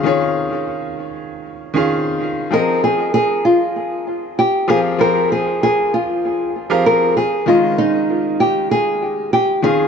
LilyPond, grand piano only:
\new Staff \with { instrumentName = "Grand piano" } { \time 4/4 \key f \minor \tempo 4 = 97 <ees des' f' aes' des''>2~ <ees des' f' aes' des''>8. <ees des' f' aes' f''>4~ <ees des' f' aes' f''>16 | <f c' aes' bes' ees'' g''>2.~ <f c' aes' bes' ees'' g''>8 <f c' g' aes' bes' f''>16 r16 | <f c' aes' bes' c'' g''>2~ <f c' aes' bes' c'' g''>8. <f c' g' aes' bes' f''>8. r8 | <ees aes des' f' ees''>2.~ <ees aes des' f' ees''>8 <ees des' f' aes' f''>16 r16 | }